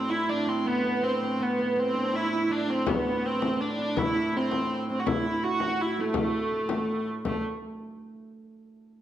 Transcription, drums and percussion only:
2.87 frame drum
3.42 frame drum
3.97 frame drum
4.51 frame drum
5.07 frame drum
5.60 frame drum
6.14 frame drum
6.52 frame drum
6.69 frame drum
7.25 frame drum

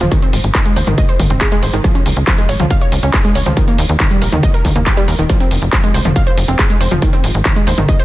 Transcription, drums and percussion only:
0.01 closed hi-hat, mid tom
0.12 kick, closed hi-hat
0.22 closed hi-hat
0.33 open hi-hat
0.44 closed hi-hat
0.55 kick, clap, closed hi-hat
0.66 closed hi-hat
0.76 open hi-hat
0.87 closed hi-hat, mid tom
0.98 kick, closed hi-hat
1.09 closed hi-hat
1.19 kick, open hi-hat, mid tom
1.30 closed hi-hat
1.41 kick, clap, closed hi-hat
1.52 closed hi-hat
1.63 open hi-hat
1.73 closed hi-hat
1.84 kick, closed hi-hat
1.95 closed hi-hat
2.06 open hi-hat
2.17 closed hi-hat
2.27 kick, clap, closed hi-hat
2.38 closed hi-hat
2.49 open hi-hat
2.60 closed hi-hat, mid tom
2.70 kick, closed hi-hat
2.81 closed hi-hat
2.92 open hi-hat
3.03 closed hi-hat
3.14 kick, clap, closed hi-hat
3.24 closed hi-hat
3.35 open hi-hat
3.46 closed hi-hat, mid tom
3.57 kick, closed hi-hat
3.68 closed hi-hat
3.78 open hi-hat
3.89 closed hi-hat
4.00 kick, clap, closed hi-hat
4.11 closed hi-hat
4.22 open hi-hat
4.32 closed hi-hat, mid tom
4.43 kick, closed hi-hat
4.54 closed hi-hat
4.65 kick, open hi-hat, mid tom
4.76 closed hi-hat
4.86 kick, clap, closed hi-hat
4.97 closed hi-hat
5.08 open hi-hat
5.19 closed hi-hat
5.29 kick, closed hi-hat
5.40 closed hi-hat
5.51 open hi-hat
5.62 closed hi-hat
5.73 kick, clap, closed hi-hat
5.83 closed hi-hat
5.94 open hi-hat
6.05 closed hi-hat, mid tom
6.16 kick, closed hi-hat
6.27 closed hi-hat
6.37 open hi-hat
6.48 closed hi-hat
6.59 kick, clap, closed hi-hat
6.70 closed hi-hat
6.81 open hi-hat
6.91 closed hi-hat, mid tom
7.02 kick, closed hi-hat
7.13 closed hi-hat
7.24 open hi-hat
7.35 closed hi-hat
7.45 kick, clap, closed hi-hat
7.56 closed hi-hat
7.67 open hi-hat
7.78 closed hi-hat, mid tom
7.89 kick, closed hi-hat
7.99 closed hi-hat

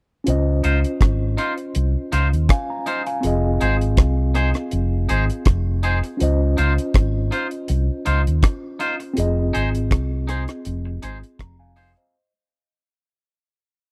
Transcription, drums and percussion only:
0.27 closed hi-hat
0.64 closed hi-hat
0.84 closed hi-hat
1.01 kick, cross-stick, closed hi-hat
1.38 closed hi-hat
1.58 closed hi-hat
1.75 closed hi-hat
2.12 closed hi-hat
2.33 closed hi-hat
2.49 kick, cross-stick, closed hi-hat
2.86 closed hi-hat
3.06 closed hi-hat
3.23 closed hi-hat
3.61 closed hi-hat
3.81 closed hi-hat
3.97 kick, cross-stick, closed hi-hat
4.35 cross-stick, closed hi-hat
4.54 cross-stick, closed hi-hat
4.71 closed hi-hat
5.09 closed hi-hat
5.30 closed hi-hat
5.45 kick, cross-stick, closed hi-hat
5.83 closed hi-hat
6.04 closed hi-hat
6.20 closed hi-hat
6.58 closed hi-hat
6.78 closed hi-hat
6.94 kick, cross-stick, closed hi-hat
7.32 closed hi-hat
7.51 closed hi-hat
7.68 closed hi-hat
8.06 closed hi-hat
8.27 closed hi-hat
8.43 kick, cross-stick, closed hi-hat
8.80 closed hi-hat
9.00 closed hi-hat
9.17 closed hi-hat
9.55 closed hi-hat
9.75 closed hi-hat
9.91 kick, cross-stick, closed hi-hat
10.29 cross-stick, closed hi-hat
10.48 cross-stick, closed hi-hat
10.65 closed hi-hat
11.03 closed hi-hat
11.23 closed hi-hat
11.39 kick, cross-stick, closed hi-hat
11.76 open hi-hat
11.97 closed hi-hat

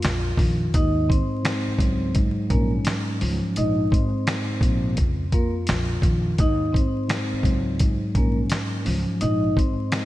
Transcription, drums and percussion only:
0.03 snare, closed hi-hat
0.37 kick, open hi-hat
0.74 kick, closed hi-hat
1.10 kick, closed hi-hat
1.45 snare, closed hi-hat
1.79 kick, closed hi-hat
2.15 kick, closed hi-hat
2.50 kick, closed hi-hat
2.85 snare, closed hi-hat
3.21 open hi-hat
3.56 closed hi-hat
3.92 kick, closed hi-hat
4.27 snare, closed hi-hat
4.61 kick, closed hi-hat
4.97 kick, closed hi-hat
5.32 kick, closed hi-hat
5.67 snare, closed hi-hat
6.02 kick, closed hi-hat
6.38 kick, closed hi-hat
6.74 kick, closed hi-hat
7.09 snare, closed hi-hat
7.43 kick, closed hi-hat
7.79 kick, closed hi-hat
8.15 kick, closed hi-hat
8.50 snare, closed hi-hat
8.86 open hi-hat
9.21 closed hi-hat
9.57 kick, closed hi-hat
9.92 snare, closed hi-hat

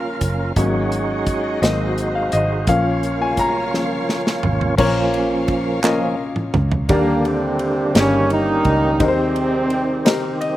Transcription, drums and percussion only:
0.21 kick, closed hi-hat
0.56 kick, closed hi-hat
0.92 closed hi-hat
1.26 kick, closed hi-hat
1.63 snare, closed hi-hat
1.98 closed hi-hat
2.32 closed hi-hat
2.67 kick, closed hi-hat
3.03 closed hi-hat
3.37 kick, closed hi-hat
3.74 snare
4.09 snare
4.27 snare
4.43 floor tom
4.61 floor tom
4.78 kick, crash
5.14 ride
5.48 kick, ride
5.84 snare, clap
6.36 mid tom
6.54 mid tom
6.72 floor tom
6.89 kick, ride
7.25 ride
7.59 ride
7.95 snare, ride
8.30 ride
8.65 kick, ride
9.00 kick, ride
9.36 ride
9.70 ride
10.06 snare, ride
10.41 ride

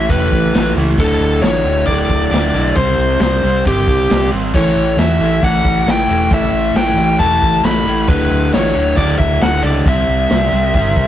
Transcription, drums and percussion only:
0.09 kick, crash
0.32 kick
0.54 snare, crash
0.98 kick, crash
1.43 snare, crash
1.87 kick, crash
2.10 kick
2.33 snare, crash
2.77 kick, crash
3.20 snare, crash
3.65 kick, crash
3.87 kick
4.10 snare, crash
4.54 kick, crash
4.98 snare, crash
5.43 kick, crash
5.65 kick
5.87 snare, crash
6.30 kick, crash
6.75 snare, crash
7.20 kick, crash
7.42 kick
7.64 snare, crash
8.07 kick, crash
8.52 snare, crash
8.97 kick, crash
9.20 kick
9.41 snare, crash
9.86 kick, crash
10.30 snare, crash
10.74 kick, crash
10.96 kick

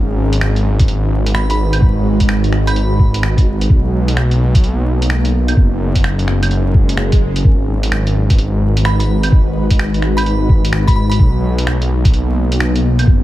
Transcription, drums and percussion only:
0.33 closed hi-hat
0.41 finger snap, claves
0.56 closed hi-hat
0.79 kick, closed hi-hat
0.88 closed hi-hat
1.26 closed hi-hat
1.35 finger snap
1.50 closed hi-hat
1.73 closed hi-hat, claves
1.82 kick
2.20 kick, closed hi-hat
2.29 finger snap, claves
2.44 closed hi-hat
2.52 finger snap
2.67 closed hi-hat, claves
2.76 closed hi-hat
2.99 kick
3.14 closed hi-hat
3.23 finger snap
3.38 kick, closed hi-hat
3.61 closed hi-hat
3.70 kick
4.08 closed hi-hat
4.17 finger snap, claves
4.31 closed hi-hat
4.55 kick, closed hi-hat
4.64 closed hi-hat
5.02 closed hi-hat
5.10 finger snap
5.25 closed hi-hat
5.48 closed hi-hat, claves
5.57 kick
5.95 kick, closed hi-hat
6.04 finger snap, claves
6.19 closed hi-hat
6.28 finger snap
6.43 closed hi-hat, claves
6.51 closed hi-hat
6.74 kick
6.89 closed hi-hat
6.97 finger snap
7.12 kick, closed hi-hat
7.36 closed hi-hat
7.45 kick
7.83 closed hi-hat
7.92 finger snap, claves
8.07 closed hi-hat
8.30 kick, closed hi-hat
8.38 closed hi-hat
8.77 closed hi-hat
8.85 finger snap
9.00 closed hi-hat
9.23 closed hi-hat, claves
9.32 kick
9.70 kick, closed hi-hat
9.79 finger snap, claves
9.94 closed hi-hat
10.02 finger snap
10.18 closed hi-hat, claves
10.26 closed hi-hat
10.49 kick
10.65 closed hi-hat
10.73 finger snap
10.88 kick, closed hi-hat
11.12 closed hi-hat
11.19 kick
11.58 closed hi-hat
11.67 finger snap, claves
11.82 closed hi-hat
12.05 kick, closed hi-hat
12.14 closed hi-hat
12.52 closed hi-hat
12.60 finger snap
12.76 closed hi-hat
12.99 closed hi-hat, claves
13.07 kick

